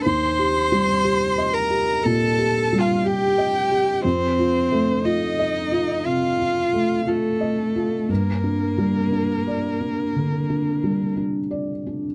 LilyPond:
<<
  \new Staff \with { instrumentName = "Violin" } { \time 4/4 \key g \minor \tempo 4 = 60 c'''4. bes''8 a''8. f''16 g''4 | c''4 ees''4 f''4 a'4 | bes'2. r4 | }
  \new Staff \with { instrumentName = "Cello" } { \time 4/4 \key g \minor c''4. bes'8 a'8. f'16 g'4 | c'4 ees'4 f'4 a4 | bes2. r4 | }
  \new Staff \with { instrumentName = "Felt piano" } { \time 4/4 \key g \minor \tuplet 3/2 { ees,8 g'8 g8 g'8 ees''8 g'8 bes,8 g'8 g8 g'8 ees''8 g'8 } | \tuplet 3/2 { f,8 f'8 a8 f'8 ees''8 f'8 c8 f'8 a8 f'8 ees''8 f'8 } | \tuplet 3/2 { g,8 d'8 g8 d'8 d''8 d'8 d8 d'8 g8 d'8 d''8 d'8 } | }
>>